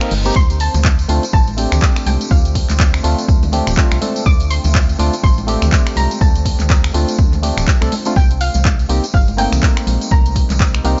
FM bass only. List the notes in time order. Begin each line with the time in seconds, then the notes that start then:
0.11 G1
0.36 D2
0.74 D2
1.09 D2
1.33 A1
1.72 D2
2.06 C2
2.31 D2
2.69 D2
3.04 D2
3.28 D2
3.67 D1
3.92 C2
4.26 D2
4.65 D2
4.99 D2
5.24 A1
5.62 D2
5.97 C2
6.21 D2
6.60 D2
6.94 D2
7.19 D2
7.57 D1
7.82 C2
8.16 C2
8.55 C2
8.89 C2
9.14 G1
9.52 C2
9.87 A#1
10.11 C2
10.50 C2
10.85 C2